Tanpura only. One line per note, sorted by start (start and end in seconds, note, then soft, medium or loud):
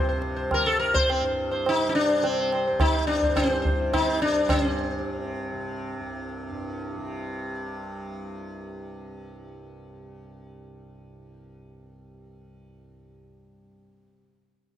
0.00 0.70 C2 medium
0.00 1.21 G2 medium
0.00 0.17 C3 medium
0.17 1.70 C3 medium
0.70 2.71 C2 medium
1.21 3.24 G2 medium
1.70 2.22 C3 medium
2.22 3.75 C3 medium
2.72 5.99 C2 medium
3.24 4.50 G2 medium
3.75 4.25 C3 medium
4.25 5.00 C3 medium
4.50 6.50 G2 medium
5.00 5.52 C3 medium
5.52 6.97 C3 medium
6.00 13.15 C2 medium
6.50 13.65 G2 medium
6.97 14.12 C3 medium